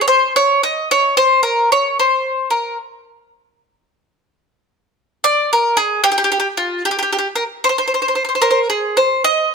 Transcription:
0.01 C#5
0.08 C5
0.36 C#5
0.63 D#5
0.91 C#5
1.17 C5
1.43 A#4
1.72 C#5
2.00 C5
2.50 A#4
5.24 D5
5.53 A#4
5.77 G#4
6.04 G4
6.12 G4
6.18 G4
6.24 G4
6.32 G4
6.40 G4
6.57 F4
6.85 G4
6.91 G4
6.99 G4
7.03 G4
7.13 G4
7.18 G4
7.35 A#4
7.64 C5
7.69 C5
7.78 C5
7.88 C5
7.94 C5
8.02 C5
8.08 C5
8.15 C5
8.25 C5
8.29 C5
8.35 C5
8.42 A#4 C5
8.50 C5
8.70 G#4
8.97 C5
9.24 D#5

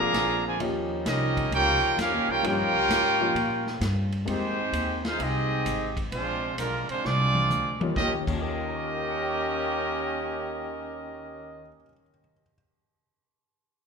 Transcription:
Already playing: C3 D3 F3 G#3 A#3 D4 G#4 D5 F5 A#5
0.00 F3 A#3 C4 D4 G#4
0.13 A#1, snare, hi-hat pedal, ride
0.45 D3 F3 G#3 F4 C5 D5 G#5
0.59 D#2 F3 G3 A#3 C#4 D#4 G4, ride
1.05 C2 G3 A#3 C#4 D#4 G4 A#4 D#5, snare, hi-hat pedal, ride
1.37 kick, ride
1.51 C#2 A#3 C#4 F4 G4 A#4 C#5, ride
1.55 G5
1.83 muted upright bass stroke
1.97 F2 A#3 C#4 F4 A#4, snare, hi-hat pedal, ride
2.01 G4 F5
2.13 D#2
2.28 C#2 A#3 C#4 F4 G4 A#4 C#5 G5
2.43 G2 F3 A#3 C#4 D#4 F4 G4, ride
2.47 F4 A#4 C#5 G5
2.58 D#2
2.74 C#2
2.88 G#2, snare, hi-hat pedal, ride
3.20 F3 A#3 C#4 D#4 F4
3.35 A#2, ride
3.67 snare
3.81 G2, snare, hi-hat pedal, ride
4.12 ride
4.25 F2 D#3 G#3 A#3 C4 D#4 G4 C5, ride
4.72 D#2, hi-hat pedal, ride
5.04 G#3 C4 D#4 F4 G#4 C5 F5, snare, ride
5.19 C2 G#3 C4 D#4 G4 G#4 D#5, ride
5.65 G#1, hi-hat pedal, ride
5.97 kick, ride
6.11 A#1 F3 G#3 C4 D4 F4 C5, ride
6.57 B1 D3 F3 G#3 A#3 D4 F4 A#4, hi-hat pedal, ride
6.89 F3 G#3 C4 D4 F4 C5, muted upright bass stroke, ride
7.04 C2 F3 G#3 C4 D4 F4 G#4 D5, snare
7.35 high tom
7.50 D2, hi-hat pedal, high tom
7.80 D#2 G3 A#3 C#4 D#4 F4, muted upright bass stroke, high tom
7.90 D#3
7.95 D#2 D#3 A#3 C#4 G4 A#4 D#5, kick, snare
8.02 F4
8.08 G4
8.14 D#2
8.21 D#3
8.27 D#2 D#3 A#3 C#4 G4 A#4 D#5, kick, crash
8.33 F4
8.39 G4 A#4
8.49 C#5
8.57 F5
8.66 A#5
8.76 C#6
8.87 F6
8.98 A#6
9.11 C#7

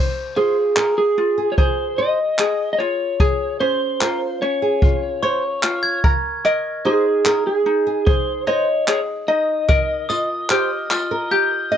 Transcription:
Already playing: C5
0.36 F4 G#4 C5
0.77 G#4 A#4, clap
0.98 G#4
1.18 F4
1.38 G#4
1.52 C#5
1.58 G#4 C5, kick
1.98 C5 D#5
2.39 G#4, clap
2.73 D#5
2.79 F4 C#5
3.20 G#4, kick
3.60 C#4 C5
4.01 F4 A#4, clap
4.42 C#4 C#5
4.62 G#4
4.82 F4, kick
5.23 C5 C#5 C#6
5.63 F4 F6, clap
5.83 G#6
6.04 A#4, kick
6.45 A#4 D#5
6.85 D#4 G#4 C5
7.26 G#4 A#4, clap
7.47 G#4
7.66 D#4
7.87 G#4
8.06 G#4 C5, kick
8.47 C5 C#5 D#5
8.88 G#4 C#5, clap
9.28 D#4 D#5
9.69 A#4 D#5, kick
10.09 F4 D#5 D#6, tambourine
10.50 G4 C5 F6, clap
10.90 F4 F6, clap, tambourine
11.11 A#4
11.31 G4 G6
11.72 D#5

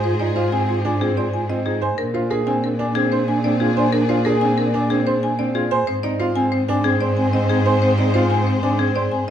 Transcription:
Already playing: G#2 G#4 C5
0.04 F4 C5
0.19 D#4 F4 D5
0.36 F4 C5
0.52 C4 F4 G#5
0.68 F4 C5
0.84 D4 F4 G#5
1.01 C4 F4 G#4
1.17 F4 C5 D5
1.33 F4 G#5
1.49 C4 F4 D#5
1.66 D#4 F4 G#4
1.82 C5 G#5
1.98 A#2 D4 G#4 A#4 D5
2.14 D4 F4 C5
2.30 D4 G#4 A#4
2.47 C4 D4 G#5
2.63 D4 A#4
2.79 D4 G#5
2.95 C4 D4 G#4
3.12 D4 C5
3.28 D4 G#5
3.43 C4 D4 D5
3.59 D4 F4 G#4
3.76 D4 C5 G#5
3.92 D4 A#4
4.08 D4 F4 C5
4.25 D4 G#4 A#4
4.41 C4 D4 G#5
4.58 D4 A#4
4.74 D4 G#5
4.90 C4 D4 G#4
5.07 D4 C5
5.22 D4 G#5
5.38 C4 D4 D5
5.55 D4 F4 G#4
5.71 C5 G#5
5.87 G#2 C4 G#4 C5
6.03 C4 D#4 D5
6.20 C4 F4 C5
6.36 C4 G#5
6.52 C4 C5
6.68 C4 D4 G#5
6.84 C4 G#4
7.00 C4 C5 D5
7.17 C4 G#5
7.33 C4 D#5
7.49 C4 D#4 G#4
7.66 C4 C5 G#5
7.81 C4 C5
7.98 C4 D#4 D5
8.14 C4 F4 C5
8.30 C4 G#5
8.46 C4 C5
8.63 C4 D4 G#5
8.79 C4 G#4
8.95 C4 C5 D5
9.12 C4 G#5

